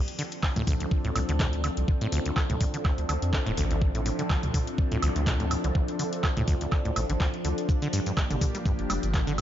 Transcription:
Already playing: analog synth pad F3 C4 D4 A4, ambient pad D4
0.08 closed hi-hat
0.19 acid bass D3, ambient pad E5, open hi-hat
0.32 closed hi-hat
0.43 kick, clap, high woodblock
0.49 ambient pad A4
0.56 sub bass D2, acid bass A2, closed hi-hat, mid tom
0.67 acid bass D2, kick, mid tom, open hi-hat
0.80 acid bass D2, closed hi-hat
0.91 kick
1.05 sub bass D2, acid bass A2, closed hi-hat
1.16 sub bass C2, acid bass A2, open hi-hat, high woodblock
1.29 sub bass D2, acid bass D3, closed hi-hat
1.40 acid bass D2, kick, clap, mid tom, open hi-hat
1.53 closed hi-hat
1.64 acid bass D3, open hi-hat, high woodblock
1.77 sub bass C2, closed hi-hat
1.88 kick
2.01 acid bass A2, closed hi-hat
2.12 acid bass D2, open hi-hat
2.26 acid bass D2, closed hi-hat
2.36 kick, clap, high woodblock
2.50 sub bass D2, acid bass A2, closed hi-hat, mid tom
2.61 acid bass A2, kick, open hi-hat
2.74 acid bass D3, closed hi-hat
2.85 acid bass D2, kick, clap, high woodblock
2.98 sub bass D2, closed hi-hat
3.09 sub bass D2, acid bass D3, open hi-hat, high woodblock
3.22 sub bass F2, closed hi-hat
3.33 kick, clap
3.46 sub bass D1, acid bass A2, closed hi-hat
3.57 sub bass A1, acid bass D2, open hi-hat
3.71 acid bass D2, closed hi-hat
3.82 kick
3.95 acid bass A2, closed hi-hat
4.06 acid bass A2, open hi-hat
4.19 acid bass D3, closed hi-hat
4.30 acid bass D2, kick, clap, high woodblock
4.43 sub bass D2, closed hi-hat, mid tom
4.54 acid bass D3, kick, mid tom, open hi-hat
4.67 closed hi-hat
4.78 kick
4.92 sub bass D2, acid bass A2, closed hi-hat
5.02 sub bass C2, acid bass D2, open hi-hat, high woodblock
5.16 sub bass D2, acid bass D2, closed hi-hat
5.27 kick, clap, mid tom, open hi-hat
5.40 acid bass A2, closed hi-hat
5.51 acid bass A2, open hi-hat, high woodblock
5.64 sub bass C2, acid bass D3, closed hi-hat
5.75 acid bass D2, kick
5.88 closed hi-hat
5.99 acid bass D3, open hi-hat
6.13 closed hi-hat
6.24 kick, clap, high woodblock
6.37 sub bass D2, acid bass A2, closed hi-hat, mid tom
6.48 acid bass D2, kick, open hi-hat
6.61 acid bass D2, closed hi-hat
6.72 kick, clap, high woodblock
6.85 sub bass D2, acid bass A2, closed hi-hat
6.96 sub bass A1, acid bass A2, open hi-hat, high woodblock
7.09 sub bass A1, acid bass D3, closed hi-hat
7.20 acid bass D2, kick, clap
7.34 closed hi-hat
7.45 sub bass D2, acid bass D3, open hi-hat
7.58 closed hi-hat
7.69 analog synth pad A#3 G4, ambient pad G4, kick, shaker
7.82 acid bass D3, ambient pad D5, closed hi-hat, shaker
7.93 acid bass G2, open hi-hat, shaker
8.06 acid bass G2, closed hi-hat, shaker
8.17 kick, clap, high woodblock, shaker
8.30 sub bass G1, acid bass D3, closed hi-hat, mid tom, shaker
8.41 acid bass D3, kick, mid tom, open hi-hat, shaker
8.55 acid bass G3, closed hi-hat, shaker
8.65 acid bass G2, ambient pad A5, kick, shaker
8.79 sub bass G1, closed hi-hat
8.90 sub bass F1, acid bass G3, open hi-hat, high woodblock, shaker
9.03 sub bass G1, closed hi-hat, shaker
9.14 kick, clap, mid tom, open hi-hat, shaker
9.27 acid bass D3, closed hi-hat, shaker

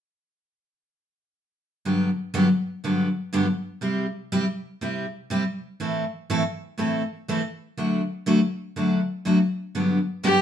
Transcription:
1.85 steel-string acoustic guitar G2 D3 F#3 B3 D4 G4
2.34 steel-string acoustic guitar G2 D3 F#3 B3 D4 G4
2.84 steel-string acoustic guitar G2 D3 F#3 B3 D4 G4
3.33 steel-string acoustic guitar G2 D3 F#3 B3 D4 G4
3.81 steel-string acoustic guitar C3 G3 C4 E4 G4
4.32 steel-string acoustic guitar C3 G3 C4 E4 G4
4.81 steel-string acoustic guitar C3 G3 C4 E4 G4
5.30 steel-string acoustic guitar C3 G3 C4 E4 G4
5.80 steel-string acoustic guitar A2 E3 A3 C4 E4 A4
6.30 steel-string acoustic guitar A2 E3 A3 C4 E4 A4
6.78 steel-string acoustic guitar A2 E3 A3 C4 E4 A4
7.28 steel-string acoustic guitar A2 E3 A3 C4 E4 A4
7.77 steel-string acoustic guitar D3 F#3 A3 D4 F#4
8.26 steel-string acoustic guitar D3 F#3 A3 D4 F#4
8.76 steel-string acoustic guitar D3 F#3 A3 D4 F#4
9.25 steel-string acoustic guitar D3 F#3 A3 D4 F#4
9.75 steel-string acoustic guitar G2 D3 F#3 B3 D4 G4
10.23 steel-string acoustic guitar G2 D3 F#3 B3 D4 G4, fiddle G4

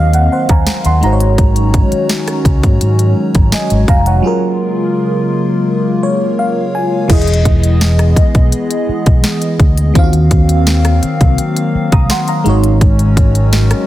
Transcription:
Already playing: fingered electric bass D#2, fm electric piano D#3 C4 F#4 D#5 F5, analog synth pad D#3 F#3 A#3 C4 F5
0.13 fm electric piano F#5, closed hi-hat
0.32 fm electric piano C5 F#5
0.49 fingered electric bass D#2, fm electric piano F5 G#5 A#5, kick, closed hi-hat
0.67 fm electric piano A#5, snare, closed hi-hat
0.85 fingered electric bass D#2, fm electric piano F#5 C6, closed hi-hat
1.01 fingered electric bass G#1, analog synth pad F#3 G#3 C#4 F#4, fm electric piano G#3 D#4 F#4 A#5, closed hi-hat
1.06 fm electric piano C5
1.13 fm electric piano C#5
1.20 closed hi-hat
1.38 kick, closed hi-hat
1.56 closed hi-hat
1.74 kick, closed hi-hat
1.92 muted fingered electric bass stroke, closed hi-hat
2.09 snare, closed hi-hat
2.28 cross-stick, closed hi-hat
2.45 fingered electric bass C#2, kick, closed hi-hat
2.63 fingered electric bass G#2, kick, closed hi-hat
2.81 fingered electric bass G#2, closed hi-hat
2.99 closed hi-hat
3.35 fingered electric bass G#1, kick, closed hi-hat
3.52 fm electric piano D#5 G#5, snare, closed hi-hat
3.70 fingered electric bass G#1, closed hi-hat
3.88 fingered electric bass F1, fm electric piano F5 A#5, kick, closed hi-hat
4.06 fm electric piano C#5 F#5, closed hi-hat
4.22 analog synth pad C#3 G#3 A#3 F4, fm electric piano F#3 F4 G#4
4.27 fm electric piano A#4
6.03 fm electric piano C#5
6.39 fm electric piano F5
6.75 fm electric piano G#5
7.08 fingered electric bass E1, fm electric piano E3 E4 G#4, analog synth pad E3 G#3 B3 G#4 D#5, kick, closed hi-hat, crash
7.13 fm electric piano D#5
7.22 closed hi-hat
7.27 closed hi-hat
7.34 closed hi-hat
7.45 kick, closed hi-hat
7.63 closed hi-hat
7.81 snare, closed hi-hat
7.99 cross-stick, closed hi-hat
8.16 muted fingered electric bass stroke, kick, closed hi-hat
8.35 fingered electric bass B1, kick, closed hi-hat
8.52 closed hi-hat
8.71 closed hi-hat
8.89 muted fingered electric bass stroke
9.06 fingered electric bass B1, kick, closed hi-hat
9.24 snare, closed hi-hat
9.42 closed hi-hat
9.60 fingered electric bass D2, kick, closed hi-hat
9.78 closed hi-hat
9.94 fingered electric bass D#2, fm electric piano D#3 C4 F4, analog synth pad D#3 F#3 A#3 C4 F5, kick, closed hi-hat
9.99 fm electric piano F5
10.04 fm electric piano F#4
10.13 closed hi-hat
10.31 kick, closed hi-hat
10.49 closed hi-hat
10.67 snare, closed hi-hat
10.85 cross-stick, closed hi-hat
11.03 muted fingered electric bass stroke, closed hi-hat
11.21 fingered electric bass C2, kick, closed hi-hat
11.38 closed hi-hat
11.56 closed hi-hat
11.75 muted fingered electric bass stroke
11.92 fingered electric bass C2, fm electric piano A#5 D#6, kick, closed hi-hat
12.10 fm electric piano F#5 C6, snare, closed hi-hat
12.28 fm electric piano F5 A#5, closed hi-hat
12.44 fingered electric bass G#1, fm electric piano G#3 D#4 F#4, analog synth pad G#3 C#4 F#4, closed hi-hat
12.49 fm electric piano C#5
12.64 closed hi-hat
12.81 kick, closed hi-hat
12.99 closed hi-hat
13.17 kick, closed hi-hat
13.35 closed hi-hat
13.53 snare, closed hi-hat
13.71 cross-stick, closed hi-hat

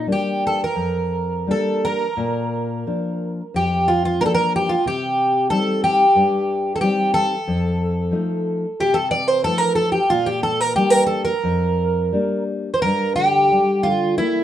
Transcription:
0.07 nylon-string guitar G3 A#3 D4
0.12 twelve-string acoustic guitar G4
0.47 twelve-string acoustic guitar A4
0.64 twelve-string acoustic guitar A#4
0.76 nylon-string guitar F2
1.47 nylon-string guitar G3 A#3 D4, twelve-string acoustic guitar A4
1.85 twelve-string acoustic guitar A#4
2.17 nylon-string guitar A#2
2.87 nylon-string guitar F3 A#3 D4
3.54 nylon-string guitar F2, twelve-string acoustic guitar G4
3.88 twelve-string acoustic guitar F4
4.05 twelve-string acoustic guitar F4
4.21 nylon-string guitar F3 A#3 D4, twelve-string acoustic guitar A#4
4.26 twelve-string acoustic guitar A4
4.34 twelve-string acoustic guitar A#4
4.56 twelve-string acoustic guitar G4
4.69 twelve-string acoustic guitar F4
4.86 nylon-string guitar C3, twelve-string acoustic guitar G4
5.50 nylon-string guitar G3 C4 D#4, twelve-string acoustic guitar A4
5.84 twelve-string acoustic guitar G4
6.15 nylon-string guitar G2
6.76 twelve-string acoustic guitar A4
6.81 nylon-string guitar G3 C4 D#4, twelve-string acoustic guitar G4
7.14 twelve-string acoustic guitar A4
7.47 nylon-string guitar F2
8.11 nylon-string guitar F3 A3 D#4
8.80 nylon-string guitar C3, twelve-string acoustic guitar G4
8.94 twelve-string acoustic guitar A4
9.11 twelve-string acoustic guitar D5
9.28 twelve-string acoustic guitar C5
9.44 nylon-string guitar F3 A3 D#4, twelve-string acoustic guitar A4
9.58 twelve-string acoustic guitar A#4
9.75 twelve-string acoustic guitar A4
9.92 twelve-string acoustic guitar G4
10.10 nylon-string guitar A#2, twelve-string acoustic guitar F4
10.26 twelve-string acoustic guitar G4
10.43 twelve-string acoustic guitar A4
10.61 twelve-string acoustic guitar A#4
10.76 nylon-string guitar G3 A#3 D4, twelve-string acoustic guitar G4
10.90 twelve-string acoustic guitar A#4
11.06 twelve-string acoustic guitar A4
11.25 twelve-string acoustic guitar A#4
11.43 nylon-string guitar F2
12.13 nylon-string guitar G3 A#3 D4
12.74 twelve-string acoustic guitar C5
12.82 nylon-string guitar G2, twelve-string acoustic guitar A#4
13.16 nylon-string guitar D3, twelve-string acoustic guitar G4
13.51 nylon-string guitar G3
13.83 nylon-string guitar D3, twelve-string acoustic guitar F4
14.18 nylon-string guitar A#3, twelve-string acoustic guitar E4

